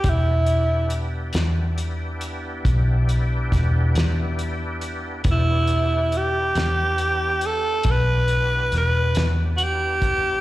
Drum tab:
HH |xxxxxxxxxxxx|xxxxxxxxxxxx|
SD |---o----oo--|---o----oo--|
BD |o-----o-o---|o-----o----o|